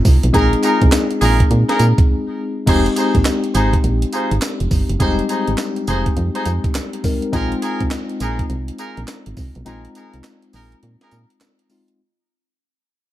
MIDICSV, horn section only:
0, 0, Header, 1, 2, 480
1, 0, Start_track
1, 0, Tempo, 582524
1, 281, Time_signature, 4, 2, 24, 8
1, 10817, End_track
2, 0, Start_track
2, 0, Title_t, "Horn section"
2, 0, Program_c, 0, 61
2, 277, Note_on_c, 0, 63, 98
2, 279, Note_on_c, 0, 65, 85
2, 280, Note_on_c, 0, 68, 90
2, 282, Note_on_c, 0, 70, 108
2, 446, Note_off_c, 0, 63, 0
2, 447, Note_off_c, 0, 65, 0
2, 448, Note_off_c, 0, 68, 0
2, 449, Note_off_c, 0, 70, 0
2, 517, Note_on_c, 0, 63, 86
2, 519, Note_on_c, 0, 65, 76
2, 521, Note_on_c, 0, 68, 73
2, 522, Note_on_c, 0, 70, 88
2, 686, Note_off_c, 0, 63, 0
2, 687, Note_off_c, 0, 65, 0
2, 688, Note_off_c, 0, 68, 0
2, 689, Note_off_c, 0, 70, 0
2, 997, Note_on_c, 0, 63, 80
2, 999, Note_on_c, 0, 65, 69
2, 1000, Note_on_c, 0, 68, 77
2, 1002, Note_on_c, 0, 70, 85
2, 1166, Note_off_c, 0, 63, 0
2, 1167, Note_off_c, 0, 65, 0
2, 1168, Note_off_c, 0, 68, 0
2, 1169, Note_off_c, 0, 70, 0
2, 1391, Note_on_c, 0, 63, 80
2, 1392, Note_on_c, 0, 65, 68
2, 1394, Note_on_c, 0, 68, 70
2, 1395, Note_on_c, 0, 70, 90
2, 1506, Note_off_c, 0, 63, 0
2, 1507, Note_off_c, 0, 65, 0
2, 1507, Note_off_c, 0, 68, 0
2, 1508, Note_off_c, 0, 70, 0
2, 2199, Note_on_c, 0, 63, 97
2, 2200, Note_on_c, 0, 65, 93
2, 2202, Note_on_c, 0, 68, 89
2, 2204, Note_on_c, 0, 72, 103
2, 2367, Note_off_c, 0, 63, 0
2, 2368, Note_off_c, 0, 65, 0
2, 2369, Note_off_c, 0, 68, 0
2, 2369, Note_off_c, 0, 72, 0
2, 2440, Note_on_c, 0, 63, 78
2, 2441, Note_on_c, 0, 65, 71
2, 2443, Note_on_c, 0, 68, 74
2, 2445, Note_on_c, 0, 72, 87
2, 2607, Note_off_c, 0, 63, 0
2, 2608, Note_off_c, 0, 65, 0
2, 2609, Note_off_c, 0, 68, 0
2, 2610, Note_off_c, 0, 72, 0
2, 2918, Note_on_c, 0, 63, 84
2, 2920, Note_on_c, 0, 65, 74
2, 2922, Note_on_c, 0, 68, 74
2, 2923, Note_on_c, 0, 72, 90
2, 3087, Note_off_c, 0, 63, 0
2, 3087, Note_off_c, 0, 65, 0
2, 3088, Note_off_c, 0, 68, 0
2, 3089, Note_off_c, 0, 72, 0
2, 3399, Note_on_c, 0, 63, 79
2, 3401, Note_on_c, 0, 65, 71
2, 3402, Note_on_c, 0, 68, 70
2, 3404, Note_on_c, 0, 72, 83
2, 3567, Note_off_c, 0, 63, 0
2, 3568, Note_off_c, 0, 65, 0
2, 3568, Note_off_c, 0, 68, 0
2, 3569, Note_off_c, 0, 72, 0
2, 4118, Note_on_c, 0, 63, 94
2, 4119, Note_on_c, 0, 65, 88
2, 4121, Note_on_c, 0, 68, 87
2, 4123, Note_on_c, 0, 72, 109
2, 4287, Note_off_c, 0, 63, 0
2, 4287, Note_off_c, 0, 65, 0
2, 4288, Note_off_c, 0, 68, 0
2, 4289, Note_off_c, 0, 72, 0
2, 4358, Note_on_c, 0, 63, 85
2, 4359, Note_on_c, 0, 65, 71
2, 4361, Note_on_c, 0, 68, 75
2, 4362, Note_on_c, 0, 72, 90
2, 4526, Note_off_c, 0, 63, 0
2, 4527, Note_off_c, 0, 65, 0
2, 4528, Note_off_c, 0, 68, 0
2, 4529, Note_off_c, 0, 72, 0
2, 4838, Note_on_c, 0, 63, 83
2, 4840, Note_on_c, 0, 65, 71
2, 4842, Note_on_c, 0, 68, 77
2, 4843, Note_on_c, 0, 72, 88
2, 5007, Note_off_c, 0, 63, 0
2, 5008, Note_off_c, 0, 65, 0
2, 5008, Note_off_c, 0, 68, 0
2, 5009, Note_off_c, 0, 72, 0
2, 5229, Note_on_c, 0, 63, 79
2, 5231, Note_on_c, 0, 65, 73
2, 5233, Note_on_c, 0, 68, 75
2, 5234, Note_on_c, 0, 72, 91
2, 5345, Note_off_c, 0, 63, 0
2, 5346, Note_off_c, 0, 65, 0
2, 5347, Note_off_c, 0, 68, 0
2, 5348, Note_off_c, 0, 72, 0
2, 6038, Note_on_c, 0, 63, 92
2, 6039, Note_on_c, 0, 65, 92
2, 6041, Note_on_c, 0, 68, 82
2, 6042, Note_on_c, 0, 70, 110
2, 6206, Note_off_c, 0, 63, 0
2, 6207, Note_off_c, 0, 65, 0
2, 6208, Note_off_c, 0, 68, 0
2, 6209, Note_off_c, 0, 70, 0
2, 6277, Note_on_c, 0, 63, 79
2, 6279, Note_on_c, 0, 65, 73
2, 6281, Note_on_c, 0, 68, 76
2, 6283, Note_on_c, 0, 70, 92
2, 6446, Note_off_c, 0, 63, 0
2, 6447, Note_off_c, 0, 65, 0
2, 6448, Note_off_c, 0, 68, 0
2, 6449, Note_off_c, 0, 70, 0
2, 6757, Note_on_c, 0, 63, 83
2, 6759, Note_on_c, 0, 65, 79
2, 6761, Note_on_c, 0, 68, 77
2, 6763, Note_on_c, 0, 70, 88
2, 6926, Note_off_c, 0, 63, 0
2, 6927, Note_off_c, 0, 65, 0
2, 6928, Note_off_c, 0, 68, 0
2, 6929, Note_off_c, 0, 70, 0
2, 7238, Note_on_c, 0, 63, 77
2, 7240, Note_on_c, 0, 65, 69
2, 7241, Note_on_c, 0, 68, 68
2, 7243, Note_on_c, 0, 70, 93
2, 7407, Note_off_c, 0, 63, 0
2, 7407, Note_off_c, 0, 65, 0
2, 7408, Note_off_c, 0, 68, 0
2, 7409, Note_off_c, 0, 70, 0
2, 7958, Note_on_c, 0, 63, 94
2, 7960, Note_on_c, 0, 65, 83
2, 7962, Note_on_c, 0, 68, 89
2, 7963, Note_on_c, 0, 70, 99
2, 8127, Note_off_c, 0, 63, 0
2, 8127, Note_off_c, 0, 65, 0
2, 8128, Note_off_c, 0, 68, 0
2, 8129, Note_off_c, 0, 70, 0
2, 8197, Note_on_c, 0, 63, 81
2, 8199, Note_on_c, 0, 65, 72
2, 8200, Note_on_c, 0, 68, 73
2, 8203, Note_on_c, 0, 70, 87
2, 8366, Note_off_c, 0, 63, 0
2, 8367, Note_off_c, 0, 65, 0
2, 8368, Note_off_c, 0, 68, 0
2, 8369, Note_off_c, 0, 70, 0
2, 8677, Note_on_c, 0, 63, 81
2, 8679, Note_on_c, 0, 65, 69
2, 8681, Note_on_c, 0, 68, 70
2, 8683, Note_on_c, 0, 70, 93
2, 8846, Note_off_c, 0, 63, 0
2, 8847, Note_off_c, 0, 65, 0
2, 8848, Note_off_c, 0, 68, 0
2, 8849, Note_off_c, 0, 70, 0
2, 9070, Note_on_c, 0, 63, 83
2, 9071, Note_on_c, 0, 65, 70
2, 9073, Note_on_c, 0, 68, 73
2, 9074, Note_on_c, 0, 70, 88
2, 9186, Note_off_c, 0, 63, 0
2, 9186, Note_off_c, 0, 65, 0
2, 9187, Note_off_c, 0, 68, 0
2, 9188, Note_off_c, 0, 70, 0
2, 10817, End_track
0, 0, End_of_file